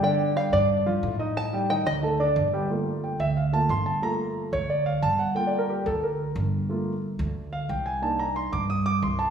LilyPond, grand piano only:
<<
  \new Staff \with { instrumentName = "Grand piano" } { \time 4/4 \key g \minor \tempo 4 = 180 <d d' d''>4 <g g' g''>8 <d' d'' d'''>4 <f f' f''>4 <ees' ees'' ees'''>8~ | <ees' ees'' ees'''>8 <g g' g''>8 <ees ees' ees''>4 <a a' a''>8 <d' d'' d'''>4 <g g' g''>8 | r4 g''8 e''8 f''8 a''8 c'''8 a''8 | bes''8 r4 cis''8 d''8 f''8 a''8 fis''8 |
\tuplet 3/2 { g''8 d''8 bes'8 } g'8 a'8 bes'2~ | bes'4 r4. f''8 g''8 aes''8 | a''8 bes''8 c'''8 d'''8 ees'''8 d'''8 c'''8 a''8 | }
  \new Staff \with { instrumentName = "Grand piano" } { \time 4/4 \key g \minor r1 | r1 | <a bes f'>4. r4 <a bes f'>8 r4 | <a bes f'>4. r2 r8 |
<bes f' a'>1 | <a bes f'>8 r2. r8 | <bes d' ees'>8 r2. r8 | }
>>